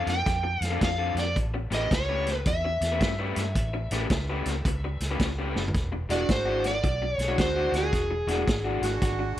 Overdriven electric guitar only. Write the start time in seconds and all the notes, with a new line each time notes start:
0.26 muted overdriven electric guitar stroke
0.43 muted overdriven electric guitar stroke
0.71 D3 C4 F4 A4
0.98 D3 C4 F4 A4
1.54 muted overdriven electric guitar stroke
1.71 A3 C#4 G4 B4
1.91 muted overdriven electric guitar stroke
2.09 A3 C#4 G4 B4
2.47 muted overdriven electric guitar stroke
2.65 muted overdriven electric guitar stroke
2.92 A3 C#4 G4 B4
3.19 A3 C#4 G4 B4
3.74 muted overdriven electric guitar stroke
3.92 A3 C#4 G4 B4
4.12 muted overdriven electric guitar stroke
4.30 A3 C#4 G4 B4
4.67 muted overdriven electric guitar stroke
4.84 muted overdriven electric guitar stroke
5.11 A3 C#4 G4 B4
5.39 A3 C#4 G4 B4
5.92 muted overdriven electric guitar stroke
6.09 E3 G#3 D4 F#4
6.29 muted overdriven electric guitar stroke
6.45 E3 G#3 D4 F#4
6.84 muted overdriven electric guitar stroke
7.02 muted overdriven electric guitar stroke
7.28 E3 G#3 D4 F#4
7.56 E3 G#3 D4 F#4
8.11 muted overdriven electric guitar stroke
8.28 E3 G#3 D4 F#4
8.47 muted overdriven electric guitar stroke
8.65 E3 G#3 D4 F#4
9.02 muted overdriven electric guitar stroke
9.19 muted overdriven electric guitar stroke